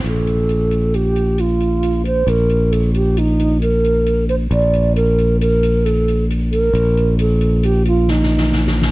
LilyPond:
<<
  \new Staff \with { instrumentName = "Alto flute" } { \time 5/4 \key bes \major \tempo 4 = 134 a'2 g'4 f'4. c''8 | bes'4 a'8 g'8 ees'4 bes'4. c''8 | d''4 bes'4 bes'4 a'4 r8 bes'8~ | bes'4 a'4 g'8 f'8 ees'4. r8 | }
  \new Staff \with { instrumentName = "Fingered electric bass" } { \clef bass \time 5/4 \key bes \major bes,,1~ bes,,4 | bes,,1~ bes,,4 | bes,,1~ bes,,4 | bes,,1~ bes,,4 | }
  \new DrumStaff \with { instrumentName = "Drums" } \drummode { \time 5/4 hh8 hh8 hh8 hh8 hh8 hh8 hh8 hh8 hh8 hh8 | hh8 hh8 hh8 hh8 hh8 hh8 hh8 hh8 hh8 hh8 | hh8 hh8 hh8 hh8 hh8 hh8 hh8 hh8 hh8 hh8 | hh8 hh8 hh8 hh8 hh8 hh8 \tuplet 3/2 { sn8 sn8 sn8 sn8 sn8 sn8 } | }
>>